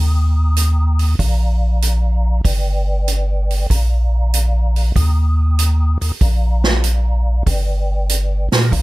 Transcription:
0.00 1.15 D#2 medium
0.57 closed hi-hat soft
0.99 open hi-hat soft
1.19 2.41 A#1 medium
1.19 kick soft
1.19 open hi-hat soft
1.82 closed hi-hat soft
2.45 3.67 G1 medium
2.45 kick soft
2.45 open hi-hat soft
3.08 closed hi-hat soft
3.51 open hi-hat soft
3.70 4.92 A#1 medium
3.70 kick soft
3.70 open hi-hat soft
4.34 closed hi-hat soft
4.76 open hi-hat soft
4.96 5.98 D#2 medium
4.96 kick soft
4.96 open hi-hat soft
5.59 closed hi-hat soft
6.02 6.12 D#2 soft
6.02 open hi-hat soft
6.21 7.43 A#1 medium
6.21 kick soft
6.21 open hi-hat soft
6.64 snare soft
6.84 closed hi-hat soft
7.47 8.49 G1 medium
7.47 kick soft
7.47 open hi-hat soft
8.09 closed hi-hat medium
8.52 8.72 A#2 medium
8.52 snare soft
8.52 open hi-hat soft
8.72 8.82 A#1 medium
8.72 kick soft
8.72 open hi-hat soft

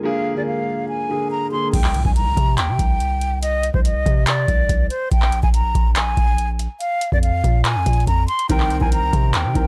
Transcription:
0.00 0.03 D3 loud
0.00 1.70 D3 medium
0.00 0.28 D3 loud
0.00 1.70 G#3 medium
0.00 0.04 A#3 medium
0.00 1.70 F4 medium
0.00 0.05 G#4 loud
0.00 1.70 A#4 medium
0.04 0.29 A#3 medium
0.04 0.29 G#4 loud
0.04 0.34 F5 loud
0.35 0.92 D3 medium
0.35 0.93 A#3 medium
0.35 0.93 G#4 medium
0.35 0.46 D5 medium
0.46 0.86 F5 medium
0.89 1.29 G#5 medium
1.09 1.42 D3 medium
1.09 1.42 A#3 medium
1.09 1.43 G#4 medium
1.31 1.50 A#5 medium
1.51 1.68 D3 medium
1.51 1.69 A#3 medium
1.51 1.69 G#4 medium
1.51 1.71 C6 medium
1.73 2.04 C2 loud
1.73 2.03 G5 loud
1.73 kick loud
1.73 closed hi-hat medium
1.73 crash medium
1.73 impact medium
1.84 clap medium
1.94 closed hi-hat medium
2.05 2.36 C2 loud
2.05 2.15 G#5 medium
2.05 kick loud
2.15 2.55 A#5 medium
2.15 closed hi-hat medium
2.37 2.59 C3 loud
2.37 kick loud
2.37 closed hi-hat medium
2.58 2.70 D#2 loud
2.58 3.39 G5 medium
2.58 clap loud
2.58 closed hi-hat medium
2.69 2.79 C3 loud
2.79 3.70 C2 loud
2.79 kick medium
2.79 closed hi-hat medium
3.00 closed hi-hat medium
3.21 closed hi-hat medium
3.42 3.72 D#5 loud
3.42 closed hi-hat medium
3.63 closed hi-hat medium
3.74 4.05 C2 loud
3.74 3.83 C5 medium
3.74 kick loud
3.85 4.25 D#5 medium
3.85 closed hi-hat medium
4.06 4.46 C3 loud
4.06 kick loud
4.06 closed hi-hat medium
4.27 4.87 D5 medium
4.27 clap loud
4.27 closed hi-hat medium
4.48 4.68 C2 loud
4.48 kick medium
4.48 closed hi-hat medium
4.69 4.90 C2 loud
4.69 kick medium
4.69 closed hi-hat medium
4.90 5.09 C5 medium
4.90 closed hi-hat medium
5.12 5.42 A#1 loud
5.12 5.41 G5 loud
5.12 kick loud
5.12 closed hi-hat medium
5.22 clap medium
5.32 closed hi-hat medium
5.43 5.74 A#1 loud
5.43 5.53 G#5 medium
5.43 kick loud
5.54 5.94 A#5 medium
5.54 closed hi-hat medium
5.75 6.15 A#1 loud
5.75 kick loud
5.75 closed hi-hat medium
5.96 6.49 G#5 loud
5.96 clap loud
5.96 closed hi-hat medium
6.17 6.68 A#1 loud
6.17 kick medium
6.17 closed hi-hat medium
6.38 closed hi-hat medium
6.59 closed hi-hat medium
6.80 7.10 F5 loud
6.80 closed hi-hat medium
7.01 closed hi-hat medium
7.12 7.43 F2 loud
7.12 7.22 D5 medium
7.12 kick medium
7.22 7.62 F5 medium
7.22 closed hi-hat medium
7.44 7.77 A#2 loud
7.44 kick loud
7.44 closed hi-hat medium
7.65 8.05 G#5 medium
7.65 clap loud
7.65 closed hi-hat medium
7.76 7.86 F2 loud
7.86 8.06 A#2 loud
7.86 kick medium
7.86 closed hi-hat medium
7.93 closed hi-hat medium
8.00 closed hi-hat soft
8.07 8.28 F2 loud
8.07 8.26 A#5 medium
8.07 kick medium
8.07 closed hi-hat medium
8.28 8.47 C6 medium
8.28 closed hi-hat soft
8.28 open hi-hat medium
8.39 closed hi-hat medium
8.49 8.80 C2 loud
8.49 8.74 D#3 medium
8.49 8.74 C4 medium
8.49 8.75 A#4 loud
8.49 8.79 G5 loud
8.49 kick loud
8.49 closed hi-hat medium
8.60 clap medium
8.70 closed hi-hat medium
8.80 9.12 C2 loud
8.80 9.37 D#3 medium
8.80 9.38 C4 medium
8.80 9.38 A#4 medium
8.80 8.90 G#5 medium
8.80 kick loud
8.92 9.32 A#5 medium
8.92 closed hi-hat medium
9.13 9.36 C3 loud
9.13 kick loud
9.13 closed hi-hat medium
9.34 9.46 D#2 loud
9.34 9.67 G5 medium
9.34 clap loud
9.34 closed hi-hat medium
9.45 9.55 C3 loud
9.54 9.67 C2 loud
9.54 9.67 D#3 medium
9.54 9.67 C4 medium
9.54 9.67 A#4 medium
9.54 kick medium
9.54 closed hi-hat medium

